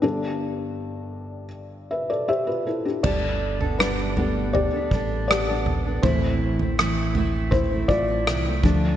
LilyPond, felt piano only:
<<
  \new Staff \with { instrumentName = "Felt piano" } { \time 4/4 \key g \mixolydian \tempo 4 = 80 << { <d' g' a'>2 r4 e''4 | <g' d''>4 <d' b'>4 <g' d''>4 <g' d''>4 | <e' c''>2 <e' c''>8 <f' d''>4 r8 | } \\ { r2 r8 <b' e''>16 <a' d''>16 <g' c''>16 <f' b'>16 <e' a'>16 <d' g'>16~ | <d' g'>16 r2. r8. | r1 | } >> }
  \new Staff \with { instrumentName = "Felt piano" } { \time 4/4 \key g \mixolydian <g,, g,>1 | r4. <g a b>8 r2 | <e a c'>4. r2 <f a d'>8 | }
>>